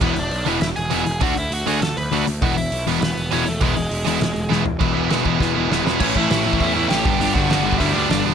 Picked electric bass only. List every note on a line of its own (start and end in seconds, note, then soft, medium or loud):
0.01 0.13 E1 medium
0.15 0.28 E1 medium
0.30 0.43 B1 medium
0.46 0.58 E1 medium
0.61 0.73 E1 medium
0.77 0.89 E1 medium
0.91 1.03 E1 medium
1.08 1.19 E1 medium
1.22 1.33 D2 medium
1.36 1.48 D2 medium
1.51 1.63 D2 medium
1.67 1.79 D2 medium
1.81 1.93 D2 medium
1.97 2.09 D2 medium
2.12 2.24 D2 medium
2.28 2.39 D2 medium
2.42 2.54 E1 medium
2.57 2.69 E1 medium
2.72 2.84 B1 medium
2.87 2.99 E1 medium
3.02 3.13 E1 medium
3.17 3.29 E1 medium
3.32 3.44 E1 medium
3.48 3.59 E1 medium
3.62 3.74 E1 medium
3.76 3.88 E1 medium
3.91 4.03 E1 medium
4.06 4.18 E1 medium
4.21 4.33 E1 medium
4.36 4.48 E1 medium
4.51 4.63 E1 medium
4.66 4.78 E1 medium
4.81 4.92 E1 medium
4.96 5.07 E1 medium
5.10 5.22 E1 medium
5.26 5.37 E1 medium
5.40 5.52 E2 loud
5.56 5.67 E1 medium
5.70 5.82 E1 medium
5.85 5.97 E1 medium
6.01 6.14 A1 medium
6.16 6.29 A1 medium
6.31 6.44 A1 medium
6.46 6.59 A1 medium
6.60 6.86 E2 loud
6.91 7.04 A1 loud
7.06 7.18 G1 medium
7.20 7.33 G1 medium
7.36 7.48 G1 medium
7.50 7.63 G1 medium
7.64 7.78 G1 medium
7.80 8.06 D2 loud
8.10 8.23 G1 loud
8.25 8.34 E1 loud